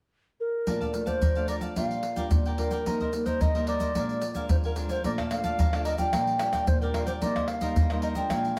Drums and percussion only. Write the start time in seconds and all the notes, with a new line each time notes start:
0.67 pandeiro, shaker, surdo
0.81 pandeiro, shaker, surdo
0.94 pandeiro, shaker
1.07 pandeiro, shaker, surdo
1.22 pandeiro, shaker, surdo
1.35 pandeiro, shaker
1.48 pandeiro, shaker
1.61 pandeiro, shaker, surdo
1.76 pandeiro, shaker, surdo
1.91 pandeiro, shaker
2.03 pandeiro
2.16 pandeiro, shaker, surdo
2.31 pandeiro, shaker, surdo
2.45 pandeiro, shaker
2.58 pandeiro, surdo
2.71 pandeiro, shaker
2.86 pandeiro, shaker, surdo
3.00 pandeiro, shaker, surdo
3.13 pandeiro, shaker
3.26 pandeiro, shaker, surdo
3.41 pandeiro, shaker, surdo
3.55 pandeiro, shaker
3.67 pandeiro
3.80 pandeiro, shaker, surdo
3.95 pandeiro, shaker, surdo
4.09 pandeiro, shaker
4.22 pandeiro, shaker
4.35 pandeiro, shaker, surdo
4.49 pandeiro, shaker, surdo
4.64 pandeiro, shaker
4.76 pandeiro, shaker, surdo
4.89 pandeiro, shaker
5.04 pandeiro, shaker, surdo
5.18 pandeiro, tamborim, shaker, surdo
5.31 pandeiro, tamborim, shaker
5.44 pandeiro, shaker, surdo
5.59 pandeiro, shaker, surdo
5.73 pandeiro, tamborim, shaker
5.85 pandeiro, shaker
5.98 pandeiro, shaker, surdo
6.13 pandeiro, tamborim, shaker, surdo
6.27 pandeiro, shaker
6.39 pandeiro, tamborim, shaker
6.53 pandeiro, tamborim, shaker, surdo
6.67 pandeiro, shaker, surdo
6.82 pandeiro, shaker
6.94 pandeiro, tamborim, surdo
7.07 pandeiro, shaker
7.22 pandeiro, shaker, surdo
7.36 pandeiro, tamborim, shaker, surdo
7.48 pandeiro, tamborim
7.61 pandeiro, shaker, surdo
7.76 pandeiro, shaker, surdo
7.90 pandeiro, tamborim, shaker
8.02 pandeiro
8.15 pandeiro, shaker, surdo
8.30 pandeiro, tamborim, shaker, surdo
8.45 pandeiro, shaker